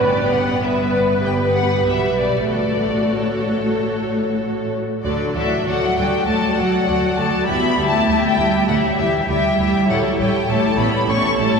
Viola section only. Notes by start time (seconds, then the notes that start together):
Already playing: B4
0.03 B3
0.63 B4
1.24 B3 G4
1.85 G3 G4
2.48 A3 F#4
5.05 F#3 F#4
5.35 F#3 F#4
5.66 F#3 F#4
5.97 F#3 F#4
6.27 F#3 F#4
6.58 F#3 F#4
6.87 F#3 F#4
7.17 F#3 F#4
7.46 G3 E4
7.76 G3 E4
8.06 G3 E4
8.37 G3 E4
8.68 G3 E4
8.97 G3 E4
9.27 G3 E4
9.57 G3 E4
9.87 G3 E4
10.18 G3 E4
10.47 G3 E4
10.77 G3 E4
11.07 G3 E4
11.37 G3 E4